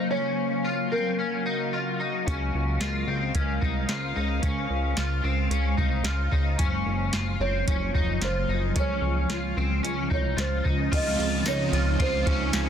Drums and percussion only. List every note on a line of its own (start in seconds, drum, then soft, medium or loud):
2.27 kick medium
2.27 closed hi-hat medium
2.81 snare loud
2.81 closed hi-hat medium
3.35 kick medium
3.35 closed hi-hat medium
3.62 kick medium
3.89 snare medium
3.89 closed hi-hat medium
4.43 kick medium
4.43 closed hi-hat medium
4.97 snare loud
4.97 closed hi-hat medium
5.51 closed hi-hat medium
5.78 kick medium
6.04 snare loud
6.04 closed hi-hat medium
6.32 kick medium
6.59 kick medium
6.59 closed hi-hat medium
7.13 snare medium
7.13 closed hi-hat medium
7.68 kick medium
7.68 closed hi-hat medium
7.95 kick medium
8.22 snare loud
8.22 closed hi-hat medium
8.76 kick medium
8.76 closed hi-hat medium
9.30 snare medium
9.30 closed hi-hat medium
9.85 closed hi-hat medium
10.11 kick medium
10.38 snare loud
10.38 closed hi-hat medium
10.65 kick medium
10.92 kick loud
10.92 crash loud
10.92 ride medium
11.20 ride soft
11.46 snare loud
11.46 ride medium
11.46 tambourine medium
11.73 ride soft
12.00 kick medium
12.00 ride medium
12.27 kick medium
12.27 ride soft
12.53 snare loud
12.53 ride medium
12.53 tambourine medium